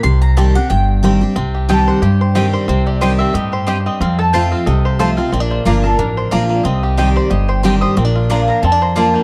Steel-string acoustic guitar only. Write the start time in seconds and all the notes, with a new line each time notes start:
0.04 C3
0.37 D#3 G3 C4 G4
0.55 C4 G4
0.70 G2
1.03 D#3 G3 C4 G4
1.21 C4 G4
1.36 C3
1.69 D#3 G3 C4 G4
2.03 G2
2.35 D#3 G3 C4 G4
2.69 C3
3.02 D#3 G3 C4 G4
3.35 A2
3.68 G2
4.01 F2
4.34 F3 A3 C4 F4
4.67 C3
5.00 F3 A3 C4 F4
5.18 C4 F4
5.33 A#2
5.65 F3 A#3 D4 F4
5.83 D4 F4
5.99 F2
6.31 F3 A#3 D4 F4
6.65 C3
6.97 D#3 G3 C4 G4
7.31 G2
7.63 D#3 G3 C4 G4
7.97 A#2
8.30 F3 A#3 D4 F4
8.63 F2
8.96 F3 A#3 D4 F4